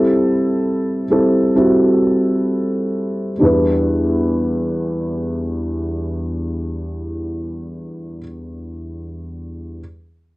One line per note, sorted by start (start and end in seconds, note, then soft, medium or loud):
0.00 1.04 G3 medium
0.00 1.04 C4 soft
0.00 1.04 E4 soft
0.00 1.05 A4 medium
1.10 1.53 G3 soft
1.10 1.53 C4 soft
1.10 1.53 E4 soft
1.10 1.54 A4 medium
1.55 3.32 G3 soft
1.55 3.32 C4 soft
1.55 3.32 E4 soft
1.55 3.33 F#4 medium
3.39 8.19 E2 soft
3.39 8.16 G3 soft
3.39 8.17 D4 soft
3.39 8.19 E4 soft
3.44 8.22 B4 soft